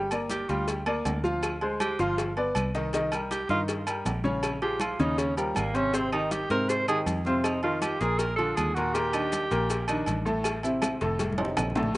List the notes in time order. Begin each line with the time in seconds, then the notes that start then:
Already playing: G1
0.11 A#3 A#4 D5, high conga, low agogo, claves, maracas
0.30 G4, cowbell, high conga, low agogo, maracas
0.48 D2 G3 F4 G4 G5, cowbell, high conga, maracas
0.67 cowbell, high conga, low agogo, maracas
0.86 A#3 A#4 D5, high conga, low agogo, claves
1.05 D2, cowbell, high conga, low timbale, low agogo, maracas
1.24 F3 F4 F5, high conga, maracas
1.43 cowbell, high conga, low agogo, claves, maracas
1.61 G#3 G#4 C5, high conga, low agogo
1.80 G4, cowbell, high conga, low agogo, claves, maracas
1.99 G1 F3 F4 F5, cowbell, maracas
2.18 cowbell, high conga, low agogo, maracas
2.37 B3 B4 D5, high conga, low agogo
2.55 C2, cowbell, high conga, low agogo, claves, maracas
2.74 D#3 D#4 D#5, cowbell, high conga, maracas
2.93 D#3 D#4 D#5, cowbell, low agogo, maracas
3.12 G3 G4 A#4, high conga, low agogo, claves, maracas
3.31 G4, cowbell, high conga, low agogo, maracas
3.49 G2 D#3 D#4 F4 D#5, cowbell, maracas
3.68 cowbell, high conga, low agogo, maracas
3.87 G3 G4 A#4, high conga, low agogo, claves, maracas
4.05 A#1, cowbell, high conga, low timbale, low agogo, maracas
4.24 C#3 C#4 C#5, high conga, maracas
4.43 cowbell, high conga, low agogo, claves, maracas
4.62 F3 F4 G4 G#4, high conga, low agogo
4.80 F4, cowbell, high conga, low agogo, claves, maracas
4.99 D#2 C#3 C#4 D#4 C#5, cowbell, high conga, maracas
5.18 C#4, cowbell, high conga, low agogo, maracas
5.37 F3 G3 G4 A#4, high conga, low agogo, maracas
5.55 G#1 A#3, cowbell, high conga, low timbale, low agogo, claves, maracas
5.74 C3 C4 C#4 C5, cowbell, maracas
5.92 C3 C4 C5, cowbell, high conga, low agogo, maracas
6.12 D#3 D#4 G4, high conga, low agogo, claves
6.31 G4, cowbell, high conga, low agogo, maracas
6.50 G#2 C3 C4 A#4 C5, cowbell, maracas
6.68 C5, cowbell, high conga, low agogo, maracas
6.88 D#3 D#4 G4 G#4, high conga, low agogo, claves, maracas
7.06 F2, cowbell, high conga, low agogo, maracas
7.25 C3 C4 F4 C5, high conga, maracas
7.43 D#4, cowbell, high conga, low agogo, claves, maracas
7.62 D#3 D#4 F4, high conga, low agogo
7.82 G4, cowbell, high conga, low agogo, claves, maracas
8.00 A#1 A#2 A#3 G#4 A#4, cowbell, maracas
8.19 A#4, cowbell, high conga, low agogo, maracas
8.36 D3 D4 F4 A4, high conga, low agogo
8.56 D#2 G#4, cowbell, high conga, low agogo, claves, maracas
8.75 A#2 A#3 F#4 A#4, cowbell, maracas
8.94 A#2 A#3 G4 A#4, cowbell, high conga, low agogo, maracas
9.13 D#3 D4 D#4, high conga, low agogo, claves, maracas
9.32 cowbell, high conga, low agogo, maracas
9.51 A#1 A#2 A#3 A#4, cowbell, high conga, maracas
9.70 cowbell, low agogo, maracas
9.88 D#3 D4 D#4, high conga, low agogo, claves, maracas
10.06 A1, cowbell, high conga, low agogo, maracas
10.25 A2 A3 A4, high conga, maracas
10.44 cowbell, high conga, low agogo, claves, maracas
10.63 C3 C4 E4, high conga, low agogo, maracas
10.82 cowbell, high bongo, high conga, low agogo, claves, maracas
11.01 F1 A2 A3 A4, cowbell, high conga, maracas
11.19 cowbell, high conga, low agogo, maracas
11.32 high conga
11.38 C3 C4 D#4, low bongo, high timbale, low agogo
11.45 low conga
11.57 A#1, cowbell, low bongo, low conga, low timbale, low agogo, claves, maracas
11.70 low conga
11.75 A2 A3 A4, cowbell, low bongo, low timbale, maracas
11.83 low conga